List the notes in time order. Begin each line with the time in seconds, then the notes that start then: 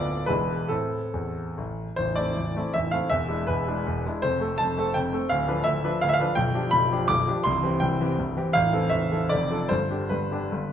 Already playing: D1 D2 B3 D4 F4 D5
0.26 E1 E2 G#3 D4 E4 B4
0.68 A2 C4 E4 A4
1.14 E2
1.58 A1
1.96 A0 A1 C5
2.16 A3 C4 E4 D5
2.36 A0 A1
2.56 A3 C4 E4
2.74 A0 A1 E5
2.91 A3 C4 E4 F5
3.10 E1 E2 E5
3.28 G#3 D4 E4
3.47 E1 E2 B4
3.68 G#3 D4 E4
3.87 E1 E2
4.06 G#3 D4 E4
4.22 F1 F2 C5
4.40 A3 C4 A4
4.58 F1 F2 A5
4.78 A3 C4 A4
4.94 F1 F2 G5
5.13 A3 C4 A4
5.29 D1 D2 F5
5.48 F3 D4 B4
5.64 D1 D2 E5
5.84 F3 D4 B4
6.01 D1 D2 F5
6.09 E5
6.14 F5
6.20 F3 D4 B4
6.35 B0 B1 G5
6.54 F3 D4 G4
6.71 B0 B1 B5
6.92 F3 D4 G4
7.08 B0 B1 D6
7.27 F3 D4 G4
7.44 C1 C2 C6
7.63 E3 C4 G4
7.80 C1 C2 G5
8.00 E3 C4 G4
8.19 C1 C2
8.37 E3 C4 G4
8.53 A0 A1 F5
8.72 E3 C4 A4
8.89 A0 A1 E5
9.11 E3 C4 A4
9.29 F1 F2 D5
9.50 F3 D4 A4
9.69 G1 G2 C5
9.90 D3 D4 G4
10.09 G1 G2 B4
10.32 D3 D4 G4
10.52 G1 G2